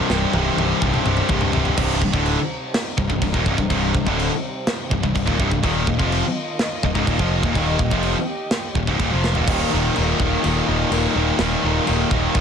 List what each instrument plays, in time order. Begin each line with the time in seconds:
Already playing: distorted electric guitar C3, string section C3 G3 C4 D#4
0.10 picked electric bass C1, distorted electric guitar C2 G2 C3, snare
0.33 picked electric bass C1, distorted electric guitar C2 G2 C3, high tom
0.57 picked electric bass C1, distorted electric guitar C2 G2 C3, high tom
0.81 picked electric bass C1, distorted electric guitar C2 G2 C3, kick, mid tom
0.94 mid tom
1.05 picked electric bass C1, distorted electric guitar C2 G2 C3, mid tom
1.17 mid tom
1.29 picked electric bass C1, distorted electric guitar C2 G2 C3, kick, mid tom
1.41 floor tom
1.53 picked electric bass C1, distorted electric guitar C2 G2 C3, floor tom
1.65 floor tom
1.76 picked electric bass C1, distorted electric guitar C2 G2 C3, string section C3 G3 D#4, kick, crash
1.81 string section C4
2.01 picked electric bass C1, distorted electric guitar C2 G2, kick
2.13 picked electric bass D1, distorted electric guitar D2 A2 D3, kick
2.26 crash
2.74 snare, crash
2.98 picked electric bass C1, distorted electric guitar C2 G2, kick
3.09 picked electric bass C1, distorted electric guitar C2 G2, kick
3.22 picked electric bass C1, distorted electric guitar C2 G2, kick, crash
3.33 picked electric bass D#1, distorted electric guitar D#2 A#2, kick
3.46 picked electric bass C1, distorted electric guitar C2 G2, kick
3.58 picked electric bass C1, distorted electric guitar C2 G2, kick
3.70 picked electric bass C1, distorted electric guitar C2 G2 C3, kick, crash
3.95 picked electric bass C1, distorted electric guitar C2 G2, kick
4.07 picked electric bass D1, distorted electric guitar D2 A2 D3, kick
4.20 crash
4.67 snare, crash
4.91 picked electric bass C1, distorted electric guitar C2 G2, kick
5.03 picked electric bass C1, distorted electric guitar C2 G2, kick
5.15 picked electric bass C1, distorted electric guitar C2 G2, kick, crash
5.25 picked electric bass D#1, distorted electric guitar D#2 A#2, kick
5.40 picked electric bass C1, distorted electric guitar C2 G2, kick
5.51 picked electric bass C1, distorted electric guitar C2 G2, kick
5.63 picked electric bass D#1, distorted electric guitar D#2 A#2 D#3, string section D#3 A#3 F4 D#5, kick, crash
5.87 picked electric bass D#1, distorted electric guitar D#2 A#2, kick
5.98 picked electric bass F1, distorted electric guitar F2 C3 F3, kick
6.12 crash
6.59 snare, crash
6.83 picked electric bass D#1, distorted electric guitar D#2 A#2, kick
6.95 picked electric bass C#1, distorted electric guitar C#2 G#2, kick
7.06 picked electric bass D#1, distorted electric guitar D#2 A#2, kick, crash
7.19 picked electric bass F1, distorted electric guitar F2 C3 F3, kick
7.43 picked electric bass D#1, distorted electric guitar D#2 A#2, kick
7.55 picked electric bass D#1, distorted electric guitar D#2 A#2 D#3, string section G4, kick, crash
7.79 picked electric bass D#1, distorted electric guitar D#2 A#2, kick
7.91 picked electric bass F1, distorted electric guitar F2 C3 F3, kick
8.03 crash
8.51 snare, crash
8.75 picked electric bass D#1, distorted electric guitar D#2 A#2, kick
8.87 picked electric bass C#1, distorted electric guitar C#2 G#2, kick
9.00 picked electric bass D#1, distorted electric guitar D#2 A#2, kick, crash
9.13 picked electric bass F1, distorted electric guitar F2 C3 F3
9.24 snare
9.35 picked electric bass D#1, distorted electric guitar D#2 A#2, floor tom
9.48 picked electric bass D#1, distorted electric guitar D#2 A#2 D#3, kick, crash, china
9.72 picked electric bass D#1, distorted electric guitar D#2 A#2 D#3
9.96 picked electric bass D#1, distorted electric guitar D#2 A#2 D#3, china
10.20 picked electric bass D#1, distorted electric guitar D#2 A#2 D#3, kick
10.44 picked electric bass D#1, distorted electric guitar D#2 A#2 D#3, china
10.67 picked electric bass D#1, distorted electric guitar D#2 A#2 D#3
10.91 picked electric bass D#1, distorted electric guitar D#2 A#2 D#3, china
11.16 picked electric bass D#1, distorted electric guitar D#2 A#2 D#3
11.39 picked electric bass D#1, distorted electric guitar D#2 A#2 D#3, snare, china
11.64 picked electric bass D#1, distorted electric guitar D#2 A#2 D#3
11.87 picked electric bass D#1, distorted electric guitar D#2 A#2 D#3, china
12.11 picked electric bass D#1, distorted electric guitar D#2 A#2 D#3, kick
12.34 picked electric bass D#1, distorted electric guitar D#2 A#2 D#3, kick, china